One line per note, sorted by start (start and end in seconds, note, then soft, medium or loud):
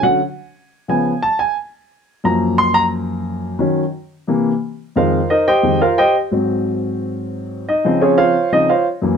0.03 0.18 D3 soft
0.03 0.19 F#3 soft
0.03 0.19 C#4 soft
0.03 0.20 F#5 medium
0.88 1.11 C#3 soft
0.88 1.11 F3 soft
0.88 1.11 B3 medium
0.88 1.20 G#5 medium
1.22 1.39 A5 medium
1.39 1.55 G#5 medium
2.24 3.56 F#2 medium
2.24 3.56 F3 medium
2.24 3.56 A#3 medium
2.24 2.56 A#5 medium
2.58 2.74 C6 loud
2.74 2.85 A#5 loud
3.59 3.82 D#3 soft
3.59 3.82 F#3 soft
3.59 3.83 C#4 medium
4.28 4.50 C3 medium
4.28 4.50 E3 soft
4.28 4.51 A#3 medium
4.96 5.18 F2 medium
4.96 5.18 D#3 soft
4.96 5.19 G#3 medium
4.96 5.28 F4 medium
4.96 5.28 A#4 medium
4.96 5.28 C5 medium
4.96 5.28 F5 medium
5.30 5.46 D#4 medium
5.30 5.47 A#4 medium
5.30 5.47 C5 medium
5.30 5.46 D#5 medium
5.48 5.79 G4 medium
5.48 5.79 C5 medium
5.48 5.79 D#5 medium
5.48 5.79 G5 medium
5.63 5.78 F2 soft
5.63 5.79 D#3 soft
5.63 5.79 G#3 soft
5.81 5.97 F4 medium
5.81 5.97 A#4 medium
5.81 5.97 C5 medium
5.81 5.97 F5 medium
5.98 6.14 G4 medium
5.98 6.14 C5 medium
5.98 6.14 D#5 medium
5.98 6.14 G5 medium
6.31 7.63 G#2 soft
6.31 7.63 F#3 soft
6.31 7.64 C4 medium
7.69 8.00 D#4 medium
7.69 7.99 D#5 medium
7.84 8.33 C#3 medium
7.84 8.33 F3 medium
7.84 8.33 C4 medium
8.02 8.18 C#4 medium
8.02 8.16 F4 medium
8.02 8.18 G#4 medium
8.02 8.17 C#5 medium
8.18 8.49 F4 medium
8.18 8.49 C5 medium
8.18 8.49 C#5 medium
8.18 8.49 F5 medium
8.52 8.67 C#3 soft
8.52 8.67 F3 soft
8.52 8.68 C4 soft
8.52 8.69 D#4 medium
8.52 8.69 D#5 medium
8.69 8.86 F4 medium
8.69 8.86 C5 medium
8.69 8.86 C#5 medium
8.69 8.86 F5 medium
9.02 9.17 F#2 soft
9.02 9.17 E3 soft
9.02 9.17 A#3 medium